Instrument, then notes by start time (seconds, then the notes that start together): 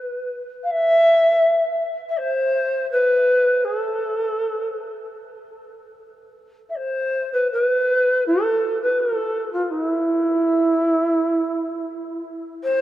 shakuhachi
Already playing: B4
0.63 F5
0.70 E5
2.09 E5
2.17 C5
2.91 B4
3.64 G#4
3.76 A4
6.69 E5
6.75 C5
7.32 B4
7.51 A#4
7.64 B4
8.26 A4
8.82 B4
8.99 A4
9.52 F4
9.64 F4
9.70 D#4
9.84 E4
12.63 C5